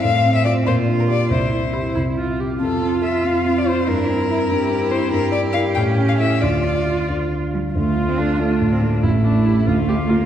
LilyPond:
<<
  \new Staff \with { instrumentName = "Violin" } { \time 6/8 \key c \mixolydian \tempo 4. = 94 f''8. e''16 d''8 c''8. bes'16 d''8 | c''4. r4. | a'4 e''8 f''8. d''16 c''8 | bes'2~ bes'8 c''8 |
\key d \minor bes'8 d''8 f''8 g''8. f''16 e''8 | d''4. r4. | f'4. d'4. | e'4. f'4. | }
  \new Staff \with { instrumentName = "Viola" } { \time 6/8 \key c \mixolydian r4 c'8 r4 g'8 | r4 e'8 e'8 f'8 g'8 | f'2. | e'2.~ |
\key d \minor e'4. cis'4. | f'2~ f'8 r8 | f'2. | e'8 d'8 e'8 f'8 g'8 f'8 | }
  \new Staff \with { instrumentName = "Grand piano" } { \time 6/8 \key c \mixolydian a,8 c'8 <f' c''>8 bes,8 d'8 g'8 | c,8 e'8 g'8 c,8 e'8 g'8 | f,8 c'8 f'8 f,8 c'8 f'8 | g,8 c'8 e'8 g,8 c'8 e'8 |
\key d \minor g,8 d'8 <e' bes'>8 a,8 cis'8 <e' a'>8 | d,8 d'8 f'8 d,8 d'8 f'8 | d,8 d'8 <f' a'>8 <f' a'>8 a,8 <f' a'>8 | a,,8 cis'8 <g' a'>8 d,8 d'8 <f' a'>8 | }
  \new Staff \with { instrumentName = "Cello" } { \time 6/8 \key c \mixolydian c'4. f'4. | e'2~ e'16 r8. | f'2. | d'8 c'8 e'8 g'4. |
\key d \minor g'2. | f'2~ f'16 r16 g8 | a8. c'16 d'8 a8. c'16 bes8 | a2~ a8 bes8 | }
>>